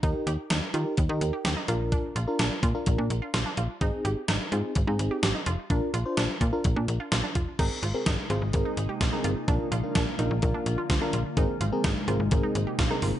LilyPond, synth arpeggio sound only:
\new Staff \with { instrumentName = "Synth arpeggio sound" } { \time 4/4 \key aes \lydian \tempo 4 = 127 ees'8 g'8 ees'8 f'8 r16 ees'8 g'16 g'16 ees'16 f'8 | d'8 f'8 d'8 f'8 r16 d'8 f'16 f'16 d'16 f'8 | ees'8 g'8 ees'8 f'8 r16 ees'8 g'16 g'16 ees'16 f'8 | d'8 f'8 d'8 f'8 r16 d'8 f'16 f'16 d'16 f'8 |
ees'8 f'8 ees'8 f'8 r16 ees'8 g'16 f'16 ees'16 f'8 | d'8 f'8 d'8 ees'8 r16 d'8 f'16 f'16 d'16 f'8 | ees'8 f'8 ees'8 f'8 r16 ees'8 g'16 f'16 ees'16 f'8 | }